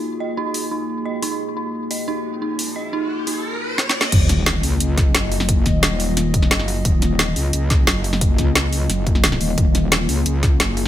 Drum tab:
CC |------------------------------------------------|------------------------------------------------|------------------------------------------------|x-----------------------------------------------|
HH |------------------o-----------------------o-----|------------------o-----------------------o-----|------------------o-----------------------------|x-----x-----x-----o-----x-----x-----x-----o-----|
SD |------------------------------------------------|------------------------------------------------|------------------------------------o---o---o---|------o-----o-----------------o-----o--------o--|
BD |------------------------------------------------|------------------------------------------------|------------------------------------------------|o-----------------------------o-----------------|

CC |------------------------------------------------|------------------------------------------------|------------------------------------------------|------------------------------------------------|
HH |x-----x-----x-----o-----x-----x-----x-----o-----|x-----x-----x-----o-----x-----x-----x-----o-----|x-----x-----x-----o-----x-----x-----x-----o-----|x-----x-----x-----o-----x-----x-----x-----o-----|
SD |------o-----o-----------o--------o--o--o--------|------o-----o-----------------o-----o--------o--|------o-----o-----------o--------o--o--o--------|------o-----o-----------------o-----o-----------|
BD |o-----o-----------------------o-----------------|o-----------------------------o-----------------|o-----o-----------------------o-----------------|o-----------------------------o-----------------|